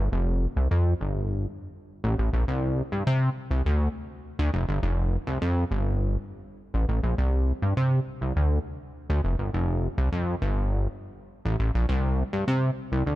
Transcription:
0.12 F1
0.56 C2
0.71 F2
1.01 G1
2.04 A1
2.18 A1
2.33 A#1
2.48 C2
2.92 G2
3.07 C3
3.51 C2
3.66 D2
4.39 D2
4.54 F1
4.68 G1
4.83 F1
5.27 C2
5.42 F2
5.71 G1
6.74 A1
6.89 A1
7.03 A#1
7.18 C2
7.62 G2
7.77 C3
8.21 C2
8.36 D2
9.10 D2
9.24 F1
9.39 G1
9.53 F1
9.98 C2
10.12 F2
10.42 G1
11.45 A1
11.60 A1
11.74 A#1
11.89 C2
12.33 G2
12.48 C3
12.92 C2
13.07 D2

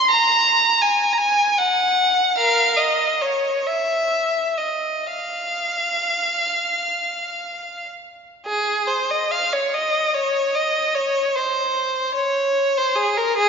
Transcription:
Already playing: C6
0.10 A#5
0.81 G#5
1.13 A#5
1.18 G#5
1.58 F#5
2.37 A#4 F5
2.77 D#5
3.21 C#5
3.66 E5
4.58 D#5
5.07 F5
8.46 G#4
8.87 C5
9.10 D#5
9.31 F5
9.52 C#5
9.74 D#5
10.15 C#5
10.55 D#5
10.94 C#5
11.35 C5
12.14 C#5
12.77 C5
12.96 G#4
13.17 A#4
13.37 G#4

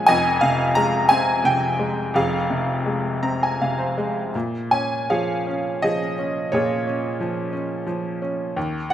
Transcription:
0.07 F1 F2 D#5 G#5
0.41 C3 F5
0.75 G#3 A#5
1.09 C4 G#5
1.44 C3 G5
1.79 G#3
2.14 F1 F2 G#4 F5
2.50 C3
2.86 G#3
3.22 C4 A#5
3.43 G#5
3.61 C3 F5
3.79 C5
3.98 G#3
4.35 A#2
4.71 C#4 G#5
5.10 F3 G#4 C#5 F5
5.47 C#4
5.82 F3 G#4 D#5
6.18 C#4
6.52 A#2 F4 G#4 C#5
6.87 C#4
7.20 F3
7.53 C#4
7.87 F3
8.22 C#4
8.56 D#2
8.90 F#5

